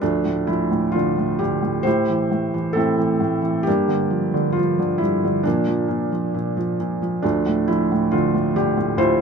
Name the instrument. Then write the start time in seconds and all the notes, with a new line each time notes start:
felt piano
0.02 D2 F3 A3 D4
0.25 A2
0.47 F3 E4
0.72 A2
0.92 D3 F4
1.17 A2
1.39 D3 G4
1.62 A2
1.83 A2 G4 C5
1.87 E4
2.09 E3
2.31 A2
2.54 E3
2.73 A2 C4 A4
2.77 E4
2.98 E3
3.20 A2
3.42 E3
3.63 D4 G4
3.67 G2 A#3
3.88 D3
4.10 F3
4.34 D3
4.52 F4
4.57 F3
4.79 D3
4.98 G2 E4
5.25 D3
5.43 A#2 F3 A#3 D4
5.68 F3
5.88 A#2
6.12 F3
6.34 A#2
6.57 F3
6.80 A#2
7.02 F3
7.22 D2 F3 A3 D4
7.46 A2
7.68 F3 E4
7.92 A2
8.11 D3 F4
8.35 A2
8.56 D3 G4
8.77 A2
8.97 D2 E4 F4 C5